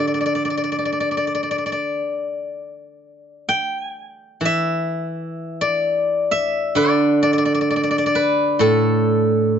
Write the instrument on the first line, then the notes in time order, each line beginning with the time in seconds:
guzheng
Already playing: D3 E5
0.07 D5
0.14 D5
0.21 D5
0.26 D5
0.35 D5
0.45 D5
0.50 D5
0.57 D5
0.64 D5
0.72 D5
0.79 D5
0.85 D5
0.93 D5
1.00 D5
1.11 D5
1.17 D5
1.27 D5
1.35 D5
1.43 D5
1.51 D5
1.58 D5
1.66 D5
1.72 D5
3.49 G5
4.41 E3
4.45 E5
5.61 D5
6.31 E5
6.75 D3 D5
7.23 D5
7.33 D5
7.38 D5
7.45 D5
7.54 D5
7.61 D5
7.70 D5
7.76 D5
7.83 D5
7.91 D5
7.98 D5
8.06 D5
8.15 B4
8.59 A2 A4